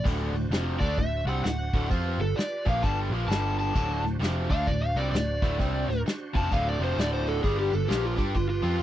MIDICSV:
0, 0, Header, 1, 8, 480
1, 0, Start_track
1, 0, Tempo, 460476
1, 59, Time_signature, 4, 2, 24, 8
1, 9200, End_track
2, 0, Start_track
2, 0, Title_t, "Electric slide guitar"
2, 0, Program_c, 0, 29
2, 829, Note_on_c, 0, 74, 98
2, 1009, Note_off_c, 0, 74, 0
2, 1026, Note_on_c, 0, 76, 89
2, 1318, Note_off_c, 0, 76, 0
2, 1330, Note_on_c, 0, 78, 74
2, 1491, Note_off_c, 0, 78, 0
2, 1503, Note_on_c, 0, 78, 99
2, 1970, Note_off_c, 0, 78, 0
2, 2305, Note_on_c, 0, 69, 86
2, 2461, Note_off_c, 0, 69, 0
2, 2461, Note_on_c, 0, 74, 80
2, 2774, Note_off_c, 0, 74, 0
2, 2803, Note_on_c, 0, 77, 80
2, 2947, Note_on_c, 0, 81, 91
2, 2950, Note_off_c, 0, 77, 0
2, 3102, Note_off_c, 0, 81, 0
2, 3421, Note_on_c, 0, 81, 88
2, 3735, Note_off_c, 0, 81, 0
2, 3748, Note_on_c, 0, 81, 93
2, 4214, Note_off_c, 0, 81, 0
2, 4698, Note_on_c, 0, 77, 109
2, 4858, Note_off_c, 0, 77, 0
2, 4869, Note_on_c, 0, 74, 94
2, 5014, Note_on_c, 0, 77, 92
2, 5024, Note_off_c, 0, 74, 0
2, 5174, Note_on_c, 0, 74, 81
2, 5177, Note_off_c, 0, 77, 0
2, 5320, Note_off_c, 0, 74, 0
2, 5333, Note_on_c, 0, 74, 105
2, 6271, Note_off_c, 0, 74, 0
2, 6636, Note_on_c, 0, 81, 91
2, 6787, Note_off_c, 0, 81, 0
2, 6802, Note_on_c, 0, 77, 90
2, 6950, Note_off_c, 0, 77, 0
2, 6969, Note_on_c, 0, 74, 82
2, 7113, Note_off_c, 0, 74, 0
2, 7131, Note_on_c, 0, 72, 93
2, 7274, Note_off_c, 0, 72, 0
2, 7296, Note_on_c, 0, 74, 101
2, 7433, Note_off_c, 0, 74, 0
2, 7437, Note_on_c, 0, 72, 84
2, 7587, Note_off_c, 0, 72, 0
2, 7592, Note_on_c, 0, 69, 88
2, 7744, Note_off_c, 0, 69, 0
2, 7751, Note_on_c, 0, 68, 89
2, 7903, Note_off_c, 0, 68, 0
2, 7914, Note_on_c, 0, 67, 84
2, 8065, Note_off_c, 0, 67, 0
2, 8074, Note_on_c, 0, 69, 87
2, 8219, Note_on_c, 0, 67, 89
2, 8224, Note_off_c, 0, 69, 0
2, 8377, Note_off_c, 0, 67, 0
2, 8392, Note_on_c, 0, 65, 85
2, 8543, Note_off_c, 0, 65, 0
2, 8715, Note_on_c, 0, 65, 87
2, 8844, Note_off_c, 0, 65, 0
2, 8857, Note_on_c, 0, 65, 85
2, 9200, Note_off_c, 0, 65, 0
2, 9200, End_track
3, 0, Start_track
3, 0, Title_t, "Tonewheel organ"
3, 0, Program_c, 1, 16
3, 53, Note_on_c, 1, 72, 65
3, 61, Note_on_c, 1, 66, 62
3, 68, Note_on_c, 1, 62, 63
3, 1958, Note_off_c, 1, 72, 0
3, 1965, Note_off_c, 1, 66, 0
3, 1969, Note_off_c, 1, 62, 0
3, 1970, Note_on_c, 1, 72, 61
3, 1975, Note_on_c, 1, 68, 64
3, 1977, Note_on_c, 1, 66, 54
3, 2138, Note_off_c, 1, 72, 0
3, 2140, Note_off_c, 1, 68, 0
3, 2141, Note_off_c, 1, 66, 0
3, 2142, Note_on_c, 1, 71, 63
3, 2144, Note_on_c, 1, 67, 66
3, 2154, Note_on_c, 1, 65, 72
3, 3869, Note_off_c, 1, 67, 0
3, 3879, Note_on_c, 1, 63, 61
3, 3881, Note_on_c, 1, 67, 61
3, 3888, Note_on_c, 1, 73, 60
3, 3889, Note_off_c, 1, 71, 0
3, 3895, Note_off_c, 1, 65, 0
3, 4039, Note_on_c, 1, 72, 63
3, 4044, Note_on_c, 1, 62, 71
3, 4045, Note_on_c, 1, 66, 66
3, 4054, Note_off_c, 1, 63, 0
3, 4055, Note_off_c, 1, 67, 0
3, 4058, Note_off_c, 1, 73, 0
3, 7695, Note_off_c, 1, 72, 0
3, 7697, Note_off_c, 1, 62, 0
3, 7697, Note_off_c, 1, 66, 0
3, 7726, Note_on_c, 1, 67, 67
3, 7742, Note_on_c, 1, 65, 68
3, 7744, Note_on_c, 1, 71, 65
3, 9200, Note_off_c, 1, 65, 0
3, 9200, Note_off_c, 1, 67, 0
3, 9200, Note_off_c, 1, 71, 0
3, 9200, End_track
4, 0, Start_track
4, 0, Title_t, "Overdriven electric guitar"
4, 0, Program_c, 2, 29
4, 46, Note_on_c, 2, 38, 84
4, 55, Note_on_c, 2, 45, 77
4, 62, Note_on_c, 2, 50, 86
4, 347, Note_off_c, 2, 38, 0
4, 351, Note_off_c, 2, 45, 0
4, 355, Note_off_c, 2, 50, 0
4, 361, Note_on_c, 2, 38, 62
4, 372, Note_on_c, 2, 45, 80
4, 504, Note_off_c, 2, 38, 0
4, 510, Note_off_c, 2, 45, 0
4, 535, Note_on_c, 2, 41, 69
4, 547, Note_on_c, 2, 48, 89
4, 553, Note_on_c, 2, 53, 84
4, 829, Note_off_c, 2, 48, 0
4, 832, Note_off_c, 2, 41, 0
4, 833, Note_on_c, 2, 50, 79
4, 841, Note_off_c, 2, 53, 0
4, 846, Note_on_c, 2, 57, 85
4, 847, Note_on_c, 2, 62, 79
4, 1012, Note_off_c, 2, 50, 0
4, 1018, Note_off_c, 2, 57, 0
4, 1018, Note_off_c, 2, 62, 0
4, 1021, Note_on_c, 2, 45, 61
4, 1023, Note_on_c, 2, 38, 55
4, 1264, Note_off_c, 2, 38, 0
4, 1264, Note_off_c, 2, 45, 0
4, 1324, Note_on_c, 2, 48, 77
4, 1331, Note_on_c, 2, 55, 82
4, 1341, Note_on_c, 2, 60, 89
4, 1497, Note_off_c, 2, 48, 0
4, 1501, Note_off_c, 2, 55, 0
4, 1506, Note_off_c, 2, 60, 0
4, 1517, Note_on_c, 2, 38, 66
4, 1519, Note_on_c, 2, 45, 75
4, 1752, Note_off_c, 2, 38, 0
4, 1753, Note_off_c, 2, 45, 0
4, 1812, Note_on_c, 2, 38, 88
4, 1815, Note_on_c, 2, 45, 89
4, 1826, Note_on_c, 2, 50, 89
4, 1963, Note_off_c, 2, 45, 0
4, 1967, Note_on_c, 2, 53, 89
4, 1975, Note_off_c, 2, 50, 0
4, 1979, Note_on_c, 2, 60, 89
4, 1982, Note_off_c, 2, 38, 0
4, 1984, Note_on_c, 2, 65, 89
4, 2269, Note_off_c, 2, 53, 0
4, 2275, Note_off_c, 2, 60, 0
4, 2278, Note_off_c, 2, 65, 0
4, 2290, Note_on_c, 2, 43, 60
4, 2295, Note_on_c, 2, 50, 71
4, 2431, Note_off_c, 2, 43, 0
4, 2434, Note_off_c, 2, 50, 0
4, 2767, Note_on_c, 2, 46, 76
4, 2781, Note_on_c, 2, 53, 88
4, 2786, Note_on_c, 2, 58, 91
4, 2941, Note_off_c, 2, 46, 0
4, 2947, Note_off_c, 2, 53, 0
4, 2948, Note_on_c, 2, 43, 81
4, 2950, Note_off_c, 2, 58, 0
4, 2962, Note_on_c, 2, 50, 79
4, 2965, Note_on_c, 2, 55, 86
4, 3241, Note_off_c, 2, 43, 0
4, 3248, Note_off_c, 2, 50, 0
4, 3249, Note_off_c, 2, 55, 0
4, 3249, Note_on_c, 2, 46, 80
4, 3260, Note_on_c, 2, 53, 82
4, 3270, Note_on_c, 2, 58, 97
4, 3418, Note_off_c, 2, 46, 0
4, 3423, Note_on_c, 2, 43, 85
4, 3428, Note_off_c, 2, 53, 0
4, 3433, Note_off_c, 2, 58, 0
4, 3436, Note_on_c, 2, 50, 99
4, 3437, Note_on_c, 2, 55, 94
4, 3895, Note_off_c, 2, 43, 0
4, 3899, Note_on_c, 2, 38, 87
4, 3907, Note_off_c, 2, 50, 0
4, 3908, Note_off_c, 2, 55, 0
4, 3911, Note_on_c, 2, 45, 90
4, 3918, Note_on_c, 2, 50, 93
4, 4197, Note_off_c, 2, 38, 0
4, 4200, Note_off_c, 2, 45, 0
4, 4206, Note_off_c, 2, 50, 0
4, 4213, Note_on_c, 2, 45, 72
4, 4217, Note_on_c, 2, 38, 71
4, 4354, Note_off_c, 2, 45, 0
4, 4356, Note_off_c, 2, 38, 0
4, 4379, Note_on_c, 2, 41, 84
4, 4393, Note_on_c, 2, 48, 93
4, 4399, Note_on_c, 2, 53, 86
4, 4677, Note_off_c, 2, 41, 0
4, 4684, Note_off_c, 2, 48, 0
4, 4687, Note_off_c, 2, 53, 0
4, 4695, Note_on_c, 2, 50, 75
4, 4701, Note_on_c, 2, 57, 77
4, 4707, Note_on_c, 2, 62, 95
4, 4866, Note_off_c, 2, 50, 0
4, 4869, Note_off_c, 2, 57, 0
4, 4872, Note_off_c, 2, 62, 0
4, 4877, Note_on_c, 2, 38, 58
4, 4888, Note_on_c, 2, 45, 56
4, 5114, Note_off_c, 2, 38, 0
4, 5120, Note_off_c, 2, 45, 0
4, 5178, Note_on_c, 2, 48, 78
4, 5190, Note_on_c, 2, 55, 99
4, 5201, Note_on_c, 2, 60, 84
4, 5347, Note_off_c, 2, 48, 0
4, 5353, Note_off_c, 2, 55, 0
4, 5359, Note_off_c, 2, 60, 0
4, 5370, Note_on_c, 2, 38, 59
4, 5374, Note_on_c, 2, 45, 64
4, 5601, Note_off_c, 2, 38, 0
4, 5603, Note_off_c, 2, 45, 0
4, 5651, Note_on_c, 2, 38, 85
4, 5653, Note_on_c, 2, 45, 90
4, 5665, Note_on_c, 2, 50, 107
4, 5819, Note_off_c, 2, 38, 0
4, 5823, Note_on_c, 2, 48, 85
4, 5825, Note_off_c, 2, 45, 0
4, 5830, Note_off_c, 2, 50, 0
4, 5834, Note_on_c, 2, 55, 88
4, 5838, Note_on_c, 2, 60, 93
4, 6119, Note_off_c, 2, 48, 0
4, 6124, Note_off_c, 2, 55, 0
4, 6126, Note_off_c, 2, 60, 0
4, 6143, Note_on_c, 2, 38, 66
4, 6151, Note_on_c, 2, 45, 77
4, 6279, Note_off_c, 2, 38, 0
4, 6283, Note_off_c, 2, 45, 0
4, 6603, Note_on_c, 2, 41, 85
4, 6612, Note_on_c, 2, 48, 91
4, 6619, Note_on_c, 2, 53, 85
4, 6771, Note_off_c, 2, 41, 0
4, 6776, Note_on_c, 2, 38, 87
4, 6780, Note_off_c, 2, 48, 0
4, 6784, Note_on_c, 2, 45, 92
4, 6787, Note_off_c, 2, 53, 0
4, 6792, Note_on_c, 2, 50, 81
4, 7074, Note_off_c, 2, 38, 0
4, 7078, Note_off_c, 2, 45, 0
4, 7082, Note_off_c, 2, 50, 0
4, 7082, Note_on_c, 2, 41, 89
4, 7087, Note_on_c, 2, 48, 91
4, 7095, Note_on_c, 2, 53, 85
4, 7258, Note_off_c, 2, 41, 0
4, 7261, Note_off_c, 2, 48, 0
4, 7264, Note_off_c, 2, 53, 0
4, 7266, Note_on_c, 2, 38, 81
4, 7276, Note_on_c, 2, 45, 92
4, 7280, Note_on_c, 2, 50, 102
4, 7739, Note_off_c, 2, 50, 0
4, 7740, Note_off_c, 2, 38, 0
4, 7745, Note_off_c, 2, 45, 0
4, 7752, Note_on_c, 2, 50, 85
4, 7753, Note_on_c, 2, 43, 80
4, 7767, Note_on_c, 2, 55, 96
4, 8028, Note_off_c, 2, 43, 0
4, 8039, Note_off_c, 2, 50, 0
4, 8040, Note_on_c, 2, 43, 68
4, 8049, Note_off_c, 2, 55, 0
4, 8051, Note_on_c, 2, 50, 75
4, 8186, Note_off_c, 2, 43, 0
4, 8191, Note_off_c, 2, 50, 0
4, 8213, Note_on_c, 2, 46, 87
4, 8221, Note_on_c, 2, 53, 86
4, 8229, Note_on_c, 2, 58, 87
4, 8502, Note_off_c, 2, 58, 0
4, 8507, Note_on_c, 2, 55, 78
4, 8511, Note_off_c, 2, 46, 0
4, 8515, Note_off_c, 2, 53, 0
4, 8522, Note_on_c, 2, 62, 81
4, 8525, Note_on_c, 2, 67, 81
4, 8689, Note_off_c, 2, 55, 0
4, 8696, Note_off_c, 2, 62, 0
4, 8698, Note_off_c, 2, 67, 0
4, 8700, Note_on_c, 2, 43, 50
4, 8702, Note_on_c, 2, 50, 59
4, 8943, Note_off_c, 2, 43, 0
4, 8944, Note_off_c, 2, 50, 0
4, 8992, Note_on_c, 2, 53, 93
4, 9003, Note_on_c, 2, 60, 81
4, 9007, Note_on_c, 2, 65, 92
4, 9166, Note_off_c, 2, 53, 0
4, 9176, Note_off_c, 2, 60, 0
4, 9178, Note_off_c, 2, 65, 0
4, 9200, End_track
5, 0, Start_track
5, 0, Title_t, "Picked electric bass"
5, 0, Program_c, 3, 34
5, 51, Note_on_c, 3, 26, 89
5, 327, Note_off_c, 3, 26, 0
5, 334, Note_on_c, 3, 26, 70
5, 503, Note_off_c, 3, 26, 0
5, 509, Note_on_c, 3, 29, 94
5, 805, Note_off_c, 3, 29, 0
5, 837, Note_on_c, 3, 38, 94
5, 1006, Note_off_c, 3, 38, 0
5, 1013, Note_on_c, 3, 26, 74
5, 1299, Note_off_c, 3, 26, 0
5, 1304, Note_on_c, 3, 36, 83
5, 1479, Note_off_c, 3, 36, 0
5, 1490, Note_on_c, 3, 26, 76
5, 1777, Note_off_c, 3, 26, 0
5, 1811, Note_on_c, 3, 26, 79
5, 1975, Note_off_c, 3, 26, 0
5, 1982, Note_on_c, 3, 41, 86
5, 2265, Note_off_c, 3, 41, 0
5, 2270, Note_on_c, 3, 31, 71
5, 2444, Note_off_c, 3, 31, 0
5, 2782, Note_on_c, 3, 34, 89
5, 2941, Note_off_c, 3, 34, 0
5, 2960, Note_on_c, 3, 31, 93
5, 3224, Note_off_c, 3, 31, 0
5, 3230, Note_on_c, 3, 34, 86
5, 3405, Note_off_c, 3, 34, 0
5, 3413, Note_on_c, 3, 31, 101
5, 3867, Note_off_c, 3, 31, 0
5, 3916, Note_on_c, 3, 26, 89
5, 4190, Note_off_c, 3, 26, 0
5, 4196, Note_on_c, 3, 26, 72
5, 4368, Note_off_c, 3, 26, 0
5, 4377, Note_on_c, 3, 29, 95
5, 4663, Note_off_c, 3, 29, 0
5, 4688, Note_on_c, 3, 38, 90
5, 4855, Note_off_c, 3, 38, 0
5, 4872, Note_on_c, 3, 26, 78
5, 5151, Note_off_c, 3, 26, 0
5, 5158, Note_on_c, 3, 36, 98
5, 5329, Note_off_c, 3, 36, 0
5, 5340, Note_on_c, 3, 26, 78
5, 5625, Note_off_c, 3, 26, 0
5, 5652, Note_on_c, 3, 26, 76
5, 5817, Note_off_c, 3, 26, 0
5, 5830, Note_on_c, 3, 36, 91
5, 6107, Note_off_c, 3, 36, 0
5, 6114, Note_on_c, 3, 26, 68
5, 6287, Note_off_c, 3, 26, 0
5, 6615, Note_on_c, 3, 29, 92
5, 6778, Note_off_c, 3, 29, 0
5, 6794, Note_on_c, 3, 26, 91
5, 7072, Note_off_c, 3, 26, 0
5, 7081, Note_on_c, 3, 29, 89
5, 7250, Note_off_c, 3, 29, 0
5, 7260, Note_on_c, 3, 26, 88
5, 7708, Note_off_c, 3, 26, 0
5, 7754, Note_on_c, 3, 31, 88
5, 8030, Note_off_c, 3, 31, 0
5, 8063, Note_on_c, 3, 31, 74
5, 8217, Note_off_c, 3, 31, 0
5, 8223, Note_on_c, 3, 34, 93
5, 8504, Note_off_c, 3, 34, 0
5, 8527, Note_on_c, 3, 43, 89
5, 8692, Note_off_c, 3, 43, 0
5, 8702, Note_on_c, 3, 31, 73
5, 8983, Note_off_c, 3, 31, 0
5, 8995, Note_on_c, 3, 41, 92
5, 9162, Note_off_c, 3, 41, 0
5, 9168, Note_on_c, 3, 31, 82
5, 9200, Note_off_c, 3, 31, 0
5, 9200, End_track
6, 0, Start_track
6, 0, Title_t, "Muted overdriven electric guitar strokes"
6, 2476, Note_on_c, 9, 29, 53
6, 2580, Note_off_c, 9, 29, 0
6, 6320, Note_on_c, 9, 29, 49
6, 6425, Note_off_c, 9, 29, 0
6, 9200, End_track
7, 0, Start_track
7, 0, Title_t, "Muted picked electric bass strokes"
7, 2459, Note_on_c, 9, 29, 44
7, 2563, Note_off_c, 9, 29, 0
7, 6306, Note_on_c, 9, 29, 43
7, 6411, Note_off_c, 9, 29, 0
7, 9200, End_track
8, 0, Start_track
8, 0, Title_t, "Drums"
8, 58, Note_on_c, 9, 36, 100
8, 62, Note_on_c, 9, 49, 103
8, 162, Note_off_c, 9, 36, 0
8, 167, Note_off_c, 9, 49, 0
8, 365, Note_on_c, 9, 51, 67
8, 469, Note_off_c, 9, 51, 0
8, 536, Note_on_c, 9, 51, 81
8, 553, Note_on_c, 9, 38, 108
8, 641, Note_off_c, 9, 51, 0
8, 657, Note_off_c, 9, 38, 0
8, 841, Note_on_c, 9, 36, 95
8, 841, Note_on_c, 9, 51, 58
8, 945, Note_off_c, 9, 36, 0
8, 946, Note_off_c, 9, 51, 0
8, 1018, Note_on_c, 9, 51, 76
8, 1019, Note_on_c, 9, 36, 81
8, 1122, Note_off_c, 9, 51, 0
8, 1123, Note_off_c, 9, 36, 0
8, 1320, Note_on_c, 9, 51, 55
8, 1424, Note_off_c, 9, 51, 0
8, 1498, Note_on_c, 9, 51, 75
8, 1515, Note_on_c, 9, 38, 93
8, 1602, Note_off_c, 9, 51, 0
8, 1619, Note_off_c, 9, 38, 0
8, 1806, Note_on_c, 9, 51, 72
8, 1808, Note_on_c, 9, 36, 122
8, 1910, Note_off_c, 9, 51, 0
8, 1912, Note_off_c, 9, 36, 0
8, 1989, Note_on_c, 9, 51, 87
8, 1990, Note_on_c, 9, 36, 105
8, 2093, Note_off_c, 9, 51, 0
8, 2094, Note_off_c, 9, 36, 0
8, 2300, Note_on_c, 9, 51, 60
8, 2404, Note_off_c, 9, 51, 0
8, 2475, Note_on_c, 9, 51, 93
8, 2491, Note_on_c, 9, 38, 106
8, 2579, Note_off_c, 9, 51, 0
8, 2595, Note_off_c, 9, 38, 0
8, 2778, Note_on_c, 9, 36, 95
8, 2783, Note_on_c, 9, 51, 63
8, 2882, Note_off_c, 9, 36, 0
8, 2887, Note_off_c, 9, 51, 0
8, 2959, Note_on_c, 9, 36, 100
8, 2962, Note_on_c, 9, 51, 82
8, 3063, Note_off_c, 9, 36, 0
8, 3066, Note_off_c, 9, 51, 0
8, 3265, Note_on_c, 9, 51, 63
8, 3369, Note_off_c, 9, 51, 0
8, 3438, Note_on_c, 9, 51, 85
8, 3455, Note_on_c, 9, 38, 113
8, 3543, Note_off_c, 9, 51, 0
8, 3559, Note_off_c, 9, 38, 0
8, 3743, Note_on_c, 9, 51, 78
8, 3847, Note_off_c, 9, 51, 0
8, 3912, Note_on_c, 9, 51, 93
8, 3915, Note_on_c, 9, 36, 101
8, 4016, Note_off_c, 9, 51, 0
8, 4019, Note_off_c, 9, 36, 0
8, 4218, Note_on_c, 9, 51, 69
8, 4235, Note_on_c, 9, 38, 28
8, 4322, Note_off_c, 9, 51, 0
8, 4339, Note_off_c, 9, 38, 0
8, 4393, Note_on_c, 9, 51, 93
8, 4409, Note_on_c, 9, 38, 101
8, 4497, Note_off_c, 9, 51, 0
8, 4513, Note_off_c, 9, 38, 0
8, 4692, Note_on_c, 9, 51, 61
8, 4694, Note_on_c, 9, 36, 96
8, 4796, Note_off_c, 9, 51, 0
8, 4798, Note_off_c, 9, 36, 0
8, 4872, Note_on_c, 9, 36, 79
8, 4872, Note_on_c, 9, 51, 76
8, 4976, Note_off_c, 9, 36, 0
8, 4976, Note_off_c, 9, 51, 0
8, 5175, Note_on_c, 9, 51, 59
8, 5279, Note_off_c, 9, 51, 0
8, 5352, Note_on_c, 9, 51, 81
8, 5368, Note_on_c, 9, 38, 97
8, 5456, Note_off_c, 9, 51, 0
8, 5473, Note_off_c, 9, 38, 0
8, 5651, Note_on_c, 9, 51, 70
8, 5653, Note_on_c, 9, 36, 121
8, 5755, Note_off_c, 9, 51, 0
8, 5757, Note_off_c, 9, 36, 0
8, 5833, Note_on_c, 9, 36, 95
8, 5833, Note_on_c, 9, 51, 87
8, 5938, Note_off_c, 9, 36, 0
8, 5938, Note_off_c, 9, 51, 0
8, 6146, Note_on_c, 9, 51, 62
8, 6163, Note_on_c, 9, 38, 34
8, 6250, Note_off_c, 9, 51, 0
8, 6267, Note_off_c, 9, 38, 0
8, 6318, Note_on_c, 9, 51, 89
8, 6335, Note_on_c, 9, 38, 107
8, 6422, Note_off_c, 9, 51, 0
8, 6439, Note_off_c, 9, 38, 0
8, 6620, Note_on_c, 9, 36, 98
8, 6626, Note_on_c, 9, 51, 69
8, 6724, Note_off_c, 9, 36, 0
8, 6730, Note_off_c, 9, 51, 0
8, 6798, Note_on_c, 9, 36, 99
8, 6802, Note_on_c, 9, 51, 93
8, 6902, Note_off_c, 9, 36, 0
8, 6906, Note_off_c, 9, 51, 0
8, 7103, Note_on_c, 9, 51, 65
8, 7207, Note_off_c, 9, 51, 0
8, 7276, Note_on_c, 9, 51, 90
8, 7292, Note_on_c, 9, 38, 104
8, 7380, Note_off_c, 9, 51, 0
8, 7396, Note_off_c, 9, 38, 0
8, 7575, Note_on_c, 9, 51, 80
8, 7679, Note_off_c, 9, 51, 0
8, 7756, Note_on_c, 9, 36, 94
8, 7757, Note_on_c, 9, 51, 94
8, 7860, Note_off_c, 9, 36, 0
8, 7861, Note_off_c, 9, 51, 0
8, 8057, Note_on_c, 9, 51, 73
8, 8161, Note_off_c, 9, 51, 0
8, 8228, Note_on_c, 9, 51, 96
8, 8244, Note_on_c, 9, 38, 109
8, 8332, Note_off_c, 9, 51, 0
8, 8349, Note_off_c, 9, 38, 0
8, 8529, Note_on_c, 9, 36, 99
8, 8529, Note_on_c, 9, 51, 64
8, 8634, Note_off_c, 9, 36, 0
8, 8634, Note_off_c, 9, 51, 0
8, 8698, Note_on_c, 9, 51, 84
8, 8705, Note_on_c, 9, 36, 86
8, 8802, Note_off_c, 9, 51, 0
8, 8810, Note_off_c, 9, 36, 0
8, 9003, Note_on_c, 9, 51, 55
8, 9107, Note_off_c, 9, 51, 0
8, 9200, End_track
0, 0, End_of_file